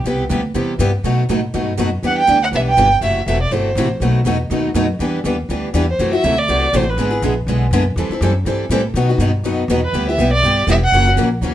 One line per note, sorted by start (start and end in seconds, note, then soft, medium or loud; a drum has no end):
0.04 0.28 C2 medium
0.04 0.23 C3 medium
0.04 0.23 G3 medium
0.04 0.24 B3 medium
0.04 0.24 E4 medium
0.04 0.24 G4 medium
0.29 0.54 D2 medium
0.29 0.40 C3 medium
0.29 0.40 G3 medium
0.29 0.40 B3 medium
0.29 0.41 E4 medium
0.29 0.41 G4 medium
0.54 0.78 E2 medium
0.54 0.72 C3 medium
0.54 0.73 G3 medium
0.54 0.73 B3 medium
0.54 0.73 E4 medium
0.54 0.73 G4 medium
0.79 1.03 G2 medium
0.79 0.89 C3 medium
0.79 0.90 G3 medium
0.79 0.90 B3 medium
0.79 0.90 E4 medium
0.79 0.90 G4 loud
1.03 1.28 B2 medium
1.03 1.22 B2 medium
1.03 1.22 F#3 medium
1.03 1.23 A3 medium
1.03 1.23 D#4 medium
1.03 1.23 F#4 medium
1.03 1.22 B4 medium
1.29 1.53 A2 medium
1.29 1.39 B2 medium
1.29 1.39 F#3 medium
1.29 1.40 A3 medium
1.29 1.40 D#4 medium
1.29 1.40 F#4 medium
1.29 1.39 B4 medium
1.54 1.77 G2 medium
1.54 1.72 B2 medium
1.54 1.72 F#3 medium
1.54 1.72 A3 medium
1.54 1.72 D#4 medium
1.54 1.72 F#4 medium
1.54 1.72 B4 medium
1.78 2.02 F#2 medium
1.78 1.88 B2 medium
1.78 1.89 F#3 medium
1.78 1.89 A3 medium
1.78 1.89 D#4 loud
1.78 1.89 F#4 medium
1.78 1.88 B4 medium
2.03 2.27 E2 medium
2.03 2.21 E3 medium
2.03 2.21 G3 medium
2.03 2.21 B3 medium
2.03 2.22 D4 medium
2.03 2.21 E4 medium
2.03 2.22 G4 medium
2.03 2.22 B4 medium
2.03 2.18 F#5 medium
2.18 2.41 G5 loud
2.27 2.51 D2 medium
2.27 2.38 E3 medium
2.27 2.37 G3 medium
2.27 2.38 B3 medium
2.27 2.38 D4 medium
2.27 2.38 E4 medium
2.27 2.38 G4 medium
2.27 2.38 B4 medium
2.43 2.48 F#5 medium
2.52 2.76 B1 medium
2.52 2.71 E3 medium
2.52 2.71 G3 medium
2.52 2.71 B3 medium
2.52 2.71 D4 medium
2.52 2.71 E4 medium
2.52 2.72 G4 medium
2.52 2.71 B4 medium
2.52 2.61 E5 medium
2.69 3.01 G5 loud
2.77 3.00 G1 medium
2.77 2.87 E3 medium
2.77 2.88 G3 medium
2.77 2.88 B3 medium
2.77 2.87 D4 medium
2.77 2.88 E4 medium
2.77 2.88 G4 loud
2.77 2.88 B4 medium
3.01 3.26 F#1 medium
3.01 3.20 C3 medium
3.01 3.20 E3 medium
3.01 3.20 F#3 medium
3.01 3.20 A3 medium
3.01 3.20 C4 medium
3.01 3.20 E4 medium
3.01 3.21 F#4 medium
3.01 3.21 A4 medium
3.01 3.26 E5 medium
3.26 3.51 E1 medium
3.26 3.37 C3 medium
3.26 3.37 E3 medium
3.26 3.37 F#3 medium
3.26 3.37 A3 medium
3.26 3.37 C4 medium
3.26 3.38 E4 medium
3.26 3.38 F#4 medium
3.26 3.38 A4 medium
3.26 3.40 E5 medium
3.42 3.53 D5 medium
3.51 3.75 G1 medium
3.51 3.69 C3 medium
3.51 3.70 E3 medium
3.51 3.70 F#3 medium
3.51 3.70 A3 medium
3.51 3.70 C4 medium
3.51 3.70 E4 medium
3.51 3.70 F#4 medium
3.51 3.70 A4 medium
3.51 3.90 C5 medium
3.75 3.99 A1 medium
3.75 3.87 C3 medium
3.75 3.87 E3 medium
3.75 3.87 F#3 medium
3.75 3.87 A3 medium
3.75 3.87 C4 loud
3.75 3.87 E4 medium
3.75 3.87 F#4 medium
3.75 3.87 A4 loud
4.00 4.24 B1 medium
4.00 4.19 B2 medium
4.00 4.19 F#3 medium
4.00 4.19 A3 medium
4.00 4.20 D#4 medium
4.00 4.20 F#4 medium
4.00 4.20 B4 medium
4.24 4.49 E2 medium
4.24 4.36 B2 medium
4.24 4.36 F#3 medium
4.24 4.36 A3 medium
4.24 4.36 D#4 medium
4.24 4.37 F#4 medium
4.24 4.36 B4 medium
4.50 4.74 D#2 medium
4.50 4.69 B2 medium
4.50 4.69 F#3 medium
4.50 4.69 A3 medium
4.50 4.69 D#4 medium
4.50 4.69 F#4 medium
4.50 4.69 B4 medium
4.74 4.99 F#2 medium
4.74 4.85 B2 medium
4.74 4.85 F#3 medium
4.74 4.86 A3 medium
4.74 4.86 D#4 medium
4.74 4.86 F#4 medium
4.74 4.86 B4 medium
4.99 5.23 E2 medium
4.99 5.18 E3 medium
4.99 5.18 G3 medium
4.99 5.18 B3 medium
4.99 5.19 D4 medium
4.99 5.19 E4 medium
4.99 5.19 G4 medium
4.99 5.19 B4 medium
5.24 5.48 D#2 medium
5.24 5.35 E3 medium
5.24 5.35 G3 medium
5.24 5.35 B3 medium
5.24 5.36 D4 medium
5.24 5.35 E4 medium
5.24 5.36 G4 medium
5.24 5.35 B4 medium
5.49 5.73 D2 medium
5.49 5.68 E3 medium
5.49 5.68 G3 medium
5.49 5.68 B3 medium
5.49 5.68 D4 medium
5.49 5.68 E4 medium
5.49 5.68 G4 medium
5.49 5.68 B4 medium
5.74 5.98 E2 medium
5.74 5.84 E3 medium
5.74 5.85 G3 medium
5.74 5.84 B3 medium
5.74 5.85 D4 medium
5.74 5.85 E4 medium
5.74 5.85 G4 medium
5.74 5.85 B4 medium
5.90 6.12 C5 medium
5.99 6.23 F#2 medium
5.99 6.12 C3 medium
5.99 6.12 E3 medium
5.99 6.17 F#3 medium
5.99 6.13 A3 medium
5.99 6.17 C4 medium
5.99 6.13 E4 medium
5.99 6.12 F#4 medium
5.99 6.18 A4 medium
6.13 6.23 A3 soft
6.13 6.23 E4 medium
6.13 6.23 F#4 medium
6.13 6.40 E5 loud
6.24 6.48 D2 medium
6.24 6.34 C3 medium
6.24 6.34 E3 medium
6.24 6.34 F#3 medium
6.24 6.34 A3 medium
6.24 6.34 C4 medium
6.24 6.34 E4 medium
6.24 6.34 F#4 medium
6.24 6.35 A4 medium
6.39 6.78 D5 loud
6.48 6.72 C2 medium
6.48 6.66 C3 medium
6.48 6.67 E3 medium
6.48 6.66 F#3 medium
6.48 6.67 A3 medium
6.48 6.67 C4 medium
6.48 6.67 E4 medium
6.48 6.67 F#4 medium
6.48 6.67 A4 medium
6.73 6.96 A1 medium
6.73 6.83 C3 medium
6.73 6.83 E3 medium
6.73 6.83 F#3 medium
6.73 6.84 A3 medium
6.73 6.84 C4 medium
6.73 6.84 E4 medium
6.73 6.84 F#4 medium
6.73 6.84 A4 loud
6.73 6.92 C5 medium
6.90 7.13 B4 medium
6.97 7.21 G#1 medium
6.97 7.11 D3 medium
6.97 7.11 G#3 medium
6.97 7.11 B3 medium
6.97 7.11 E4 medium
6.97 7.09 G#4 medium
7.11 7.22 B3 soft
7.11 7.22 E4 medium
7.11 7.22 G#4 medium
7.22 7.46 A#1 medium
7.22 7.33 D3 medium
7.22 7.33 G#3 medium
7.22 7.33 B3 medium
7.22 7.33 E4 medium
7.22 7.33 G#4 medium
7.47 7.70 B1 medium
7.47 7.66 D3 medium
7.47 7.65 G#3 medium
7.47 7.66 B3 medium
7.47 7.66 E4 medium
7.47 7.66 G#4 medium
7.71 7.95 F#2 medium
7.71 7.82 D3 medium
7.71 7.82 G#3 medium
7.71 7.83 B3 medium
7.71 7.83 E4 medium
7.71 7.83 G#4 loud
7.96 8.09 E2 medium
7.96 8.10 E3 medium
7.96 8.10 G3 medium
7.96 8.10 C4 medium
7.96 8.11 E4 medium
7.96 8.10 A4 medium
8.10 8.22 C4 soft
8.10 8.22 E4 medium
8.10 8.21 A4 medium
8.10 muted upright bass stroke soft
8.21 8.44 F#2 loud
8.21 8.32 E3 medium
8.21 8.32 G3 medium
8.21 8.32 C4 medium
8.21 8.32 E4 medium
8.21 8.32 A4 medium
8.45 8.69 G2 medium
8.45 8.64 E3 medium
8.45 8.64 G3 medium
8.45 8.64 C4 medium
8.45 8.64 E4 medium
8.45 8.65 A4 medium
8.69 8.93 A2 medium
8.69 8.81 E3 medium
8.69 8.81 G3 medium
8.69 8.81 C4 loud
8.69 8.81 E4 loud
8.69 8.81 A4 loud
8.94 9.17 B2 medium
8.94 9.08 B2 medium
8.94 9.14 D#3 medium
8.94 9.09 F#3 medium
8.94 9.09 B3 medium
8.94 9.09 D#4 medium
8.94 9.08 F#4 medium
8.94 9.14 B4 medium
9.09 9.20 B3 soft
9.09 9.20 D#4 medium
9.09 9.20 F#4 medium
9.18 9.43 G2 medium
9.18 9.30 B2 medium
9.18 9.30 D#3 medium
9.18 9.30 F#3 medium
9.18 9.31 B3 medium
9.18 9.31 D#4 medium
9.18 9.31 F#4 medium
9.18 9.30 B4 medium
9.43 9.67 F#2 medium
9.43 9.62 B2 medium
9.43 9.63 D#3 medium
9.43 9.63 F#3 medium
9.43 9.63 B3 medium
9.43 9.63 D#4 medium
9.43 9.63 F#4 medium
9.43 9.63 B4 medium
9.68 9.92 E2 medium
9.68 9.79 B2 medium
9.68 9.80 D#3 medium
9.68 9.80 F#3 medium
9.68 9.80 B3 medium
9.68 9.80 D#4 medium
9.68 9.80 F#4 medium
9.68 9.80 B4 loud
9.84 10.06 B4 medium
9.93 10.17 D2 medium
9.93 10.07 G3 medium
9.93 10.07 B3 medium
9.93 10.08 E4 medium
9.93 10.07 G4 medium
10.09 10.19 B3 soft
10.09 10.19 E4 medium
10.09 10.19 G4 medium
10.09 10.31 E5 medium
10.18 10.42 B1 medium
10.18 10.29 G3 medium
10.18 10.29 B3 medium
10.18 10.30 E4 medium
10.18 10.30 G4 medium
10.33 10.66 D5 loud
10.42 10.66 G1 medium
10.42 10.62 G3 medium
10.42 10.62 B3 medium
10.42 10.62 E4 medium
10.42 10.63 G4 medium
10.67 10.91 E1 loud
10.67 10.78 G3 medium
10.67 10.78 B3 medium
10.67 10.79 E4 medium
10.67 10.79 G4 medium
10.67 10.76 E5 medium
10.84 11.06 F#5 loud
10.92 11.16 F#1 medium
10.92 11.06 C#3 medium
10.92 11.06 E3 medium
10.92 11.11 F#3 medium
10.92 11.07 A#3 medium
10.92 11.07 C#4 medium
10.92 11.11 E4 medium
10.92 11.06 F#4 medium
10.92 11.11 A#4 medium
11.07 11.17 A#3 soft
11.07 11.18 C#4 medium
11.07 11.17 F#4 medium
11.16 11.41 A#1 medium
11.16 11.27 C#3 medium
11.16 11.28 E3 medium
11.16 11.27 F#3 medium
11.16 11.28 A#3 medium
11.16 11.28 C#4 medium
11.16 11.28 E4 medium
11.16 11.28 F#4 medium
11.16 11.28 A#4 loud
11.41 11.54 D#2 medium
11.41 11.54 C#3 medium
11.41 11.54 E3 medium
11.41 11.54 F#3 medium
11.41 11.54 A#3 medium
11.41 11.54 C#4 medium
11.41 11.54 E4 medium
11.41 11.54 F#4 medium
11.41 11.54 A#4 medium